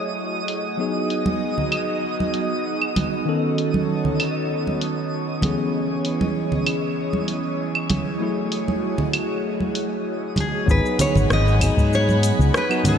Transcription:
Already playing: F#3 A3 E4 F#4 G#4 C#5 D#5
0.48 open hi-hat
0.77 F#3 B3 D#4 G#4 D#5
1.10 open hi-hat
1.26 high conga
1.58 low conga
1.72 open hi-hat, claves
2.20 high conga
2.34 open hi-hat
2.82 claves
2.96 open hi-hat, high conga, low conga
3.25 D#3 B3 C#4 D#4 A4 C#5
3.58 open hi-hat
3.74 high conga
4.05 low conga
4.20 open hi-hat, claves
4.67 high conga
4.81 open hi-hat
5.41 E3 B3 C#4 E4 G#4, open hi-hat, high conga, low conga
6.05 open hi-hat
6.21 high conga
6.52 low conga
6.66 open hi-hat, claves
7.13 high conga
7.28 open hi-hat
7.75 claves
7.90 open hi-hat, high conga, low conga
8.19 F#3 A3 E4 F#4 G#4
8.52 open hi-hat
8.68 high conga
8.98 low conga
9.13 open hi-hat, claves
9.60 high conga
9.75 open hi-hat
10.36 open hi-hat, high conga, low conga
10.40 G#4
10.66 G#1 F#3 B3 D#4 G#4 D#5 F#5 G#5 B5, kick, cabasa
10.71 B4
10.86 cabasa
10.99 C#5, open hi-hat, low conga, cabasa
11.15 G#1, low conga, cabasa
11.30 G#1 D#5, cross-stick, cabasa
11.48 cabasa
11.60 F#3 B3 D#4 G#4, kick, open hi-hat, cabasa, claves
11.77 G#2, kick, cabasa
11.93 C#5, cabasa
12.09 high conga, cabasa
12.23 open hi-hat, cabasa
12.39 C#2, cabasa
12.54 B4, cross-stick, cabasa
12.69 F#3 B3 D#4 F#4, cabasa, claves
12.84 G#2 D#3 B3 C#4 B4, open hi-hat, low conga, cabasa
12.88 A4

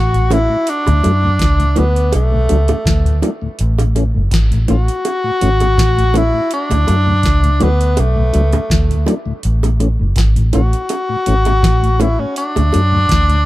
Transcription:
Already playing: A1 F#4
0.13 A2, closed hi-hat
0.30 E3 A3 C#4 E4, closed hi-hat, high bongo, low bongo
0.50 A2
0.67 D4, closed hi-hat
0.87 D2 A2, closed hi-hat, high bongo
1.03 F#2 F#3 A3 D4, closed hi-hat, high bongo
1.23 D2 A2
1.39 C#2, kick, snare, closed hi-hat
1.59 D2 A2, closed hi-hat
1.76 D2 F#3 A3 B3 D4, closed hi-hat, low bongo
1.96 closed hi-hat
2.12 B1 A3, closed hi-hat, high bongo
2.32 D2 A2
2.49 C#2 F#3 A3 D4, closed hi-hat, high bongo
2.68 D2 A2, closed hi-hat, high bongo
2.86 D2, kick, snare, closed hi-hat
3.05 D2 A2, closed hi-hat
3.22 F#3 A3 D4, closed hi-hat, high bongo, low bongo
3.42 D2 A2
3.59 A1, closed hi-hat
3.79 A2, closed hi-hat, high bongo
3.95 E3 A3 C#4, closed hi-hat, high bongo
4.14 F#1 A2
4.31 G#1, kick, snare, closed hi-hat
4.51 A1 A2, closed hi-hat
4.68 A1 E3 A3 C#4 F#4, closed hi-hat, low bongo
4.88 closed hi-hat
5.05 closed hi-hat, high bongo
5.24 A2
5.41 G#1 E3 A3 C#4, closed hi-hat
5.60 A2, closed hi-hat, high bongo
5.78 A1, kick, snare, closed hi-hat
5.97 A2, closed hi-hat
6.14 E3 A3 C#4 E4, closed hi-hat, high bongo, low bongo
6.34 A2
6.51 D4, closed hi-hat
6.70 D2 A2, closed hi-hat, high bongo
6.87 F#2 F#3 A3 D4, closed hi-hat, high bongo
7.06 D2 A2
7.23 C#2, kick, snare, closed hi-hat
7.43 D2 A2, closed hi-hat
7.60 D2 F#3 A3 B3 D4, closed hi-hat, low bongo
7.81 closed hi-hat
7.97 B1 A3, closed hi-hat, high bongo
8.16 D2 A2
8.33 C#2 F#3 A3 D4, closed hi-hat
8.53 D2 A2, closed hi-hat, high bongo
8.70 D2, kick, snare, closed hi-hat
8.89 D2 A2, closed hi-hat
9.06 F#3 A3 D4, closed hi-hat, high bongo, low bongo
9.26 D2 A2
9.43 A1, closed hi-hat
9.63 A2, closed hi-hat, high bongo
9.80 E3 A3 C#4, closed hi-hat, high bongo
10.00 F#1 A2
10.16 G#1, kick, snare, closed hi-hat
10.36 A1 A2, closed hi-hat
10.53 A1 E3 A3 C#4 F#4, closed hi-hat, low bongo
10.73 closed hi-hat
10.89 closed hi-hat, high bongo
11.09 A2
11.26 G#1 E3 A3 C#4, closed hi-hat
11.45 A2, closed hi-hat, high bongo
11.63 A1, kick, snare, closed hi-hat
11.83 A2, closed hi-hat
12.00 E3 A3 C#4 E4, closed hi-hat, high bongo, low bongo
12.19 A2 C#4
12.36 D4, closed hi-hat
12.55 D2 A2, closed hi-hat, high bongo
12.73 F#2 F#3 A3 D4, closed hi-hat, high bongo
12.92 D2 A2
13.09 D2, kick, snare, closed hi-hat
13.29 D2 A2, closed hi-hat

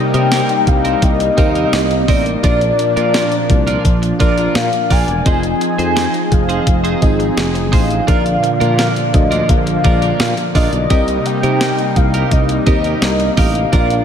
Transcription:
Already playing: C3 G3 A#3 C4 D#4 G4 A#4 D#5 G5
0.14 C3 C4 D#4 A#4, closed hi-hat
0.32 C4 D#4 A#4, snare, closed hi-hat, tambourine
0.49 muted clean electric guitar stroke, closed hi-hat
0.67 C2 F5, muted clean electric guitar stroke, kick, closed hi-hat
0.85 C4 D#4 A#4, closed hi-hat
1.02 C2 D#5, muted clean electric guitar stroke, kick, closed hi-hat
1.20 muted clean electric guitar stroke, closed hi-hat
1.37 D#2 C4 D#4 G4 A#4 F5, kick, closed hi-hat
1.55 C4 D#4 A#4, closed hi-hat
1.73 C2, snare, closed hi-hat, tambourine
1.91 muted clean electric guitar stroke, closed hi-hat
2.08 A1 C4 D#4 A#4 D5, kick, open hi-hat
2.26 muted clean electric guitar stroke, closed hi-hat
2.43 A#1 A#2 F3 D4 F4 A#4 D5, kick, closed hi-hat
2.61 muted clean electric guitar stroke, closed hi-hat
2.79 muted clean electric guitar stroke, closed hi-hat
2.96 A#2 D4 F4 A#4, closed hi-hat
3.14 D4 F4 A#4, snare, closed hi-hat, tambourine
3.31 muted clean electric guitar stroke, closed hi-hat
3.49 C2, muted clean electric guitar stroke, kick, closed hi-hat
3.67 D4 F4 A#4, closed hi-hat
3.84 A#1, muted clean electric guitar stroke, kick, closed hi-hat
4.02 muted clean electric guitar stroke, closed hi-hat
4.19 A#1 D4 F4 A#4 D5, kick, closed hi-hat
4.38 D4 F4 A#4, closed hi-hat
4.55 A#2 F5, snare, closed hi-hat, tambourine
4.73 muted clean electric guitar stroke, closed hi-hat
4.90 A#1 D4 F4 A#4 G#5, kick, open hi-hat
5.08 E1, muted clean electric guitar stroke, closed hi-hat
5.25 F1 F3 C4 D#4 F4 G#4 C5 D#5, kick, closed hi-hat
5.43 muted clean electric guitar stroke, closed hi-hat
5.61 G#5, muted clean electric guitar stroke, closed hi-hat
5.78 F2 D#4 G#4 C5, closed hi-hat
5.96 D#4 G#4 C5, snare, closed hi-hat, tambourine
6.14 muted clean electric guitar stroke, closed hi-hat
6.31 F1 F5, muted clean electric guitar stroke, kick, closed hi-hat
6.49 D#4 G#4 C5, closed hi-hat
6.67 F1, muted clean electric guitar stroke, kick, closed hi-hat
6.84 D#4 G#4 C5, closed hi-hat
7.01 G#1 C4 D#4 F4 G#4 D#5, muted clean electric guitar stroke, kick, closed hi-hat
7.19 muted clean electric guitar stroke, closed hi-hat
7.37 F1, muted clean electric guitar stroke, snare, closed hi-hat, tambourine
7.55 muted clean electric guitar stroke, closed hi-hat
7.72 A1 D#4 G#4 C5 F5, kick, open hi-hat
7.90 muted clean electric guitar stroke, closed hi-hat
8.07 A#1 A#2 D3 F3 A#3 D4 F4 A#4 D5, kick, closed hi-hat
8.25 muted clean electric guitar stroke, closed hi-hat
8.43 muted clean electric guitar stroke, closed hi-hat
8.60 A#2 D4 F4 A#4, closed hi-hat
8.78 D4 F4 A#4, snare, closed hi-hat, tambourine
8.96 muted clean electric guitar stroke, closed hi-hat
9.13 D2 D#5, muted clean electric guitar stroke, kick, closed hi-hat
9.31 D4 F4 A#4, closed hi-hat
9.49 A#1 F5, muted clean electric guitar stroke, kick, closed hi-hat
9.66 muted clean electric guitar stroke, closed hi-hat
9.84 A#1 D4 F4 A#4 D5, kick, closed hi-hat
10.02 D4 F4 A#4, closed hi-hat
10.20 A#2 F5, muted clean electric guitar stroke, snare, closed hi-hat, tambourine
10.37 muted clean electric guitar stroke, closed hi-hat
10.55 A#1 D4 F4 A#4 D#5, kick, open hi-hat
10.73 B1, muted clean electric guitar stroke, closed hi-hat
10.90 C2 C3 G3 A#3 C4 D#4 G4 A#4 D#5, kick, closed hi-hat
11.08 muted clean electric guitar stroke, closed hi-hat
11.26 G5, muted clean electric guitar stroke, closed hi-hat
11.43 C3 D#4 G4 A#4, closed hi-hat
11.61 D#4 G4 A#4, snare, closed hi-hat, tambourine
11.79 muted clean electric guitar stroke, closed hi-hat
11.96 C2 F5, muted clean electric guitar stroke, kick, closed hi-hat
12.14 D#4 G4 A#4, closed hi-hat
12.31 C2 D#5, kick, closed hi-hat
12.49 muted clean electric guitar stroke, closed hi-hat
12.66 D#2 C4 D#4 G4 A#4 D#5, kick, closed hi-hat
12.84 D#4 G4 A#4, closed hi-hat
13.02 C2, snare, closed hi-hat, tambourine
13.20 muted clean electric guitar stroke, closed hi-hat
13.37 A1 D#4 G4 A#4 F5, kick, open hi-hat
13.55 muted clean electric guitar stroke, closed hi-hat
13.72 A#1 A#2 F3 D4 F4 A#4 D5, kick, closed hi-hat
13.90 muted clean electric guitar stroke, closed hi-hat

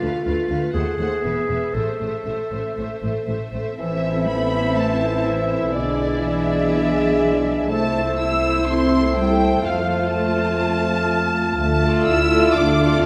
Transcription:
Already playing: F4
0.02 D2 A3 B4 F5
0.25 D2 A3 F4 B4 F5
0.50 D2 A3 B4 F5
0.74 D#2 A3 G#4 C5 F#5
0.99 D#2 A3 C5 F#5
1.23 E1 E2 B3 B4 E5
1.49 E1 E2 B3 B4 E5
1.74 A1 A2 A3 A4 C5 E5
2.00 A1 A2 A3 C5 E5
2.25 A1 A2 A3 C5 E5
2.51 A1 A2 A3 C5 E5
2.77 A1 A2 A3 C5 E5
3.02 A1 A2 A3 C5 E5
3.27 A1 A2 A3 C5 E5
3.53 A1 A2 A3 C5 E5
3.78 A1 E3 A3 C4 E4 A4 C5 E5 E6
4.28 B3 B5
4.77 A3 A5
5.26 E3 E5
5.75 B1 D3 G#3 B3 D4 G#4 D5
6.24 E3 E5
7.69 C2 A3 E4 A4 C5 A5 E6
8.19 E4 E6
8.68 C4 C6
9.17 G3 G5
9.66 F2 F3 F4 F5 F6
10.14 A3 A5
11.58 D2 A3 A4 A5
11.83 A3 F4 A4 D5
12.07 D2 E4 E6
12.31 A3 F4 A4 D5
12.55 D2 D4 D6
12.79 A3 F4 A4 D5

